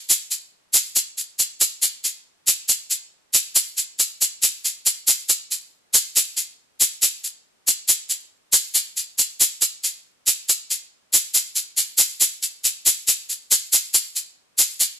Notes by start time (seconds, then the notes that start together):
0.10 shaker
0.31 shaker
0.74 shaker
0.96 shaker
1.18 shaker
1.39 shaker
1.61 shaker
1.82 shaker
2.04 shaker
2.47 shaker
2.69 shaker
2.91 shaker
3.34 shaker
3.56 shaker
3.78 shaker
3.99 shaker
4.22 shaker
4.43 shaker
4.65 shaker
4.86 shaker
5.08 shaker
5.29 shaker
5.51 shaker
5.94 shaker
6.16 shaker
6.37 shaker
6.81 shaker
7.02 shaker
7.24 shaker
7.68 shaker
7.89 shaker
8.10 shaker
8.53 shaker
8.75 shaker
8.97 shaker
9.19 shaker
9.41 shaker
9.62 shaker
9.84 shaker
10.27 shaker
10.49 shaker
10.71 shaker
11.14 shaker
11.34 shaker
11.56 shaker
11.77 shaker
11.98 shaker
12.21 shaker
12.43 shaker
12.64 shaker
12.86 shaker
13.08 shaker
13.30 shaker
13.51 shaker
13.73 shaker
13.94 shaker
14.16 shaker
14.58 shaker
14.80 shaker